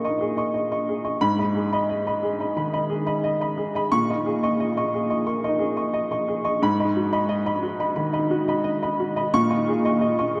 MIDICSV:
0, 0, Header, 1, 2, 480
1, 0, Start_track
1, 0, Key_signature, 5, "minor"
1, 0, Tempo, 676437
1, 870, Time_signature, 4, 2, 24, 8
1, 7380, End_track
2, 0, Start_track
2, 0, Title_t, "Upright piano"
2, 0, Program_c, 0, 0
2, 0, Control_c, 0, 64, 127
2, 0, Note_on_c, 0, 46, 69
2, 0, Note_on_c, 0, 58, 51
2, 0, Note_on_c, 0, 63, 46
2, 0, Note_on_c, 0, 68, 47
2, 0, Note_on_c, 0, 75, 47
2, 0, Note_on_c, 0, 85, 51
2, 31, Note_off_c, 0, 75, 0
2, 31, Note_on_c, 0, 75, 52
2, 36, Note_off_c, 0, 85, 0
2, 36, Note_on_c, 0, 85, 52
2, 63, Note_off_c, 0, 63, 0
2, 63, Note_on_c, 0, 63, 44
2, 140, Note_off_c, 0, 75, 0
2, 142, Note_off_c, 0, 85, 0
2, 147, Note_off_c, 0, 68, 0
2, 147, Note_on_c, 0, 68, 58
2, 165, Note_off_c, 0, 58, 0
2, 262, Note_on_c, 0, 75, 51
2, 269, Note_on_c, 0, 85, 54
2, 324, Note_off_c, 0, 63, 0
2, 342, Note_off_c, 0, 68, 0
2, 373, Note_off_c, 0, 75, 0
2, 379, Note_off_c, 0, 85, 0
2, 384, Note_on_c, 0, 75, 53
2, 498, Note_off_c, 0, 75, 0
2, 508, Note_on_c, 0, 75, 46
2, 510, Note_on_c, 0, 85, 53
2, 618, Note_off_c, 0, 75, 0
2, 619, Note_off_c, 0, 85, 0
2, 630, Note_on_c, 0, 68, 47
2, 742, Note_on_c, 0, 75, 48
2, 742, Note_on_c, 0, 85, 52
2, 822, Note_off_c, 0, 68, 0
2, 853, Note_off_c, 0, 75, 0
2, 853, Note_off_c, 0, 85, 0
2, 859, Note_on_c, 0, 83, 91
2, 860, Note_on_c, 0, 44, 75
2, 883, Control_c, 0, 64, 0
2, 891, Note_off_c, 0, 46, 0
2, 976, Note_off_c, 0, 83, 0
2, 983, Control_c, 0, 64, 127
2, 987, Note_on_c, 0, 75, 46
2, 987, Note_on_c, 0, 83, 53
2, 1022, Note_on_c, 0, 63, 50
2, 1095, Note_off_c, 0, 75, 0
2, 1095, Note_off_c, 0, 83, 0
2, 1102, Note_on_c, 0, 68, 50
2, 1225, Note_on_c, 0, 83, 60
2, 1229, Note_on_c, 0, 75, 57
2, 1280, Note_off_c, 0, 63, 0
2, 1296, Note_off_c, 0, 68, 0
2, 1332, Note_off_c, 0, 75, 0
2, 1334, Note_off_c, 0, 83, 0
2, 1343, Note_on_c, 0, 75, 54
2, 1456, Note_off_c, 0, 75, 0
2, 1467, Note_on_c, 0, 75, 51
2, 1469, Note_on_c, 0, 83, 53
2, 1574, Note_off_c, 0, 75, 0
2, 1575, Note_off_c, 0, 83, 0
2, 1581, Note_on_c, 0, 68, 51
2, 1704, Note_on_c, 0, 75, 44
2, 1706, Note_on_c, 0, 83, 48
2, 1774, Note_off_c, 0, 68, 0
2, 1791, Note_off_c, 0, 44, 0
2, 1811, Note_off_c, 0, 75, 0
2, 1812, Note_off_c, 0, 83, 0
2, 1820, Note_on_c, 0, 51, 40
2, 1822, Note_on_c, 0, 83, 52
2, 1931, Note_off_c, 0, 83, 0
2, 1939, Note_on_c, 0, 75, 54
2, 1942, Note_on_c, 0, 83, 55
2, 1973, Note_on_c, 0, 63, 49
2, 2050, Note_off_c, 0, 75, 0
2, 2051, Note_off_c, 0, 83, 0
2, 2056, Note_on_c, 0, 68, 52
2, 2078, Note_off_c, 0, 51, 0
2, 2175, Note_on_c, 0, 75, 52
2, 2177, Note_on_c, 0, 83, 58
2, 2236, Note_off_c, 0, 63, 0
2, 2253, Note_off_c, 0, 68, 0
2, 2287, Note_off_c, 0, 75, 0
2, 2289, Note_off_c, 0, 83, 0
2, 2298, Note_on_c, 0, 75, 62
2, 2408, Note_off_c, 0, 75, 0
2, 2419, Note_on_c, 0, 75, 47
2, 2423, Note_on_c, 0, 83, 59
2, 2531, Note_off_c, 0, 75, 0
2, 2533, Note_off_c, 0, 83, 0
2, 2538, Note_on_c, 0, 68, 53
2, 2662, Note_on_c, 0, 75, 55
2, 2668, Note_on_c, 0, 83, 62
2, 2735, Note_off_c, 0, 68, 0
2, 2773, Note_off_c, 0, 75, 0
2, 2776, Note_off_c, 0, 83, 0
2, 2779, Note_on_c, 0, 85, 98
2, 2780, Note_on_c, 0, 46, 67
2, 2800, Control_c, 0, 64, 0
2, 2899, Note_off_c, 0, 85, 0
2, 2904, Control_c, 0, 64, 127
2, 2909, Note_on_c, 0, 75, 49
2, 2910, Note_on_c, 0, 85, 56
2, 2945, Note_on_c, 0, 63, 51
2, 3017, Note_off_c, 0, 75, 0
2, 3017, Note_off_c, 0, 85, 0
2, 3024, Note_on_c, 0, 68, 61
2, 3144, Note_on_c, 0, 75, 61
2, 3147, Note_on_c, 0, 85, 66
2, 3202, Note_off_c, 0, 63, 0
2, 3218, Note_off_c, 0, 68, 0
2, 3254, Note_off_c, 0, 75, 0
2, 3255, Note_off_c, 0, 85, 0
2, 3264, Note_on_c, 0, 75, 56
2, 3374, Note_off_c, 0, 75, 0
2, 3384, Note_on_c, 0, 75, 59
2, 3388, Note_on_c, 0, 85, 59
2, 3494, Note_off_c, 0, 75, 0
2, 3496, Note_off_c, 0, 85, 0
2, 3506, Note_on_c, 0, 68, 54
2, 3619, Note_on_c, 0, 75, 48
2, 3622, Note_on_c, 0, 85, 47
2, 3697, Note_off_c, 0, 68, 0
2, 3713, Note_off_c, 0, 46, 0
2, 3726, Note_off_c, 0, 85, 0
2, 3729, Note_off_c, 0, 75, 0
2, 3734, Note_on_c, 0, 58, 49
2, 3737, Note_on_c, 0, 85, 60
2, 3852, Note_off_c, 0, 85, 0
2, 3861, Note_on_c, 0, 75, 56
2, 3862, Note_on_c, 0, 85, 56
2, 3891, Note_on_c, 0, 63, 56
2, 3968, Note_on_c, 0, 68, 56
2, 3969, Note_off_c, 0, 75, 0
2, 3970, Note_off_c, 0, 85, 0
2, 3993, Note_off_c, 0, 58, 0
2, 4091, Note_on_c, 0, 75, 53
2, 4096, Note_on_c, 0, 85, 57
2, 4151, Note_off_c, 0, 63, 0
2, 4166, Note_off_c, 0, 68, 0
2, 4201, Note_off_c, 0, 75, 0
2, 4206, Note_off_c, 0, 85, 0
2, 4212, Note_on_c, 0, 75, 60
2, 4324, Note_off_c, 0, 75, 0
2, 4335, Note_on_c, 0, 75, 50
2, 4339, Note_on_c, 0, 85, 58
2, 4445, Note_off_c, 0, 75, 0
2, 4447, Note_off_c, 0, 85, 0
2, 4459, Note_on_c, 0, 68, 53
2, 4573, Note_on_c, 0, 75, 54
2, 4575, Note_on_c, 0, 85, 61
2, 4651, Note_off_c, 0, 68, 0
2, 4684, Note_off_c, 0, 75, 0
2, 4685, Note_off_c, 0, 85, 0
2, 4699, Note_on_c, 0, 44, 80
2, 4703, Note_on_c, 0, 83, 85
2, 4712, Control_c, 0, 64, 0
2, 4815, Note_off_c, 0, 83, 0
2, 4825, Note_on_c, 0, 75, 51
2, 4826, Note_on_c, 0, 83, 57
2, 4848, Control_c, 0, 64, 127
2, 4859, Note_on_c, 0, 63, 53
2, 4930, Note_off_c, 0, 75, 0
2, 4930, Note_off_c, 0, 83, 0
2, 4941, Note_on_c, 0, 66, 56
2, 5056, Note_on_c, 0, 75, 60
2, 5058, Note_on_c, 0, 83, 69
2, 5113, Note_off_c, 0, 63, 0
2, 5130, Note_off_c, 0, 66, 0
2, 5162, Note_off_c, 0, 75, 0
2, 5165, Note_off_c, 0, 83, 0
2, 5172, Note_on_c, 0, 75, 66
2, 5281, Note_off_c, 0, 75, 0
2, 5292, Note_on_c, 0, 75, 56
2, 5296, Note_on_c, 0, 83, 67
2, 5401, Note_off_c, 0, 75, 0
2, 5404, Note_off_c, 0, 83, 0
2, 5411, Note_on_c, 0, 66, 54
2, 5531, Note_on_c, 0, 75, 46
2, 5536, Note_on_c, 0, 83, 60
2, 5606, Note_off_c, 0, 66, 0
2, 5628, Note_off_c, 0, 44, 0
2, 5637, Note_off_c, 0, 83, 0
2, 5642, Note_off_c, 0, 75, 0
2, 5648, Note_on_c, 0, 83, 57
2, 5653, Note_on_c, 0, 51, 50
2, 5763, Note_off_c, 0, 83, 0
2, 5769, Note_on_c, 0, 75, 55
2, 5774, Note_on_c, 0, 83, 55
2, 5812, Note_on_c, 0, 63, 54
2, 5882, Note_off_c, 0, 75, 0
2, 5884, Note_off_c, 0, 83, 0
2, 5895, Note_on_c, 0, 66, 63
2, 5913, Note_off_c, 0, 51, 0
2, 6016, Note_on_c, 0, 75, 56
2, 6023, Note_on_c, 0, 83, 61
2, 6073, Note_off_c, 0, 63, 0
2, 6090, Note_off_c, 0, 66, 0
2, 6120, Note_off_c, 0, 75, 0
2, 6131, Note_off_c, 0, 83, 0
2, 6131, Note_on_c, 0, 75, 65
2, 6251, Note_off_c, 0, 75, 0
2, 6261, Note_on_c, 0, 75, 52
2, 6265, Note_on_c, 0, 83, 61
2, 6371, Note_off_c, 0, 75, 0
2, 6373, Note_off_c, 0, 83, 0
2, 6384, Note_on_c, 0, 66, 59
2, 6502, Note_on_c, 0, 75, 57
2, 6507, Note_on_c, 0, 83, 61
2, 6578, Note_off_c, 0, 66, 0
2, 6612, Note_off_c, 0, 75, 0
2, 6615, Note_off_c, 0, 83, 0
2, 6625, Note_on_c, 0, 46, 81
2, 6626, Note_on_c, 0, 85, 107
2, 6638, Control_c, 0, 64, 0
2, 6734, Note_off_c, 0, 85, 0
2, 6739, Control_c, 0, 64, 127
2, 6741, Note_on_c, 0, 75, 55
2, 6744, Note_on_c, 0, 85, 64
2, 6785, Note_on_c, 0, 63, 54
2, 6852, Note_off_c, 0, 75, 0
2, 6854, Note_off_c, 0, 85, 0
2, 6869, Note_on_c, 0, 68, 60
2, 6990, Note_on_c, 0, 75, 61
2, 6995, Note_on_c, 0, 85, 64
2, 7042, Note_off_c, 0, 63, 0
2, 7060, Note_off_c, 0, 68, 0
2, 7094, Note_off_c, 0, 75, 0
2, 7100, Note_off_c, 0, 85, 0
2, 7104, Note_on_c, 0, 75, 57
2, 7218, Note_off_c, 0, 75, 0
2, 7229, Note_on_c, 0, 75, 55
2, 7229, Note_on_c, 0, 85, 61
2, 7337, Note_off_c, 0, 75, 0
2, 7337, Note_off_c, 0, 85, 0
2, 7347, Note_on_c, 0, 68, 51
2, 7380, Note_off_c, 0, 46, 0
2, 7380, Note_off_c, 0, 68, 0
2, 7380, End_track
0, 0, End_of_file